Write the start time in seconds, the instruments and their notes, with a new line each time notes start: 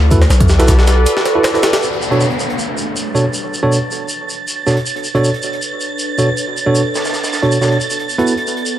Already playing: 808-style bass D2
0.11 tine electric piano E4 F#4 A4 B4, kick, closed hi-hat, shaker
0.22 snare
0.30 808-style bass B1, ambient pad F#4 A4 B4 D5, snare, closed hi-hat, shaker
0.40 kick, closed hi-hat
0.48 snare, shaker
0.59 tine electric piano E4 F#4 A4 B4, snare, closed hi-hat
0.67 kick, snare, closed hi-hat, shaker
0.79 snare
0.87 snare, closed hi-hat, shaker
1.06 closed hi-hat, shaker
1.17 snare
1.25 snare, closed hi-hat
1.35 tine electric piano E4 F#4 A4 B4
1.43 snare, closed hi-hat, shaker
1.54 tine electric piano E4 F#4 A4 B4, snare
1.62 snare, closed hi-hat, shaker
1.73 snare, closed hi-hat
1.82 ambient pad D4 A4 B4 C#5, synth texture A6, downlifter, shaker
1.93 closed hi-hat
2.02 shaker
2.11 tine electric piano B2 D4 F#4 A4 C#5, closed hi-hat
2.20 shaker
2.30 closed hi-hat
2.39 shaker
2.50 closed hi-hat
2.59 shaker
2.78 shaker
2.96 shaker
3.15 tine electric piano B2 D4 F#4 A4 C#5, shaker
3.34 shaker
3.54 shaker
3.63 tine electric piano B2 D4 F#4 A4 C#5
3.72 shaker
3.91 shaker
4.09 shaker
4.29 shaker
4.48 shaker
4.66 tine electric piano B2 D4 F#4 A4 C#5, snare, shaker
4.77 closed hi-hat
4.85 ambient pad D4 A4 B4 C#5, shaker
4.96 closed hi-hat
5.04 shaker
5.15 tine electric piano B2 D4 F#4 A4 C#5, closed hi-hat
5.24 shaker
5.34 closed hi-hat
5.42 shaker
5.53 closed hi-hat
5.62 shaker
5.80 shaker
5.99 shaker
6.18 tine electric piano B2 D4 F#4 A4 C#5, shaker
6.37 shaker
6.57 shaker
6.66 tine electric piano B2 D4 F#4 A4 C#5
6.75 shaker
6.95 snare, shaker
7.05 snare, shaker
7.13 snare, shaker
7.24 snare, shaker
7.33 snare, shaker
7.42 tine electric piano B2 D4 F#4 A4 C#5, closed hi-hat
7.52 shaker
7.61 tine electric piano B2 D4 F#4 A4 C#5, snare, shaker
7.72 closed hi-hat
7.81 shaker
7.90 ambient pad B3 F#4 A4 B4 D5, shaker
8.00 closed hi-hat
8.09 shaker
8.18 tine electric piano B3 E4 F#4 A4 B4, closed hi-hat
8.27 shaker
8.37 closed hi-hat
8.47 shaker
8.57 closed hi-hat
8.66 shaker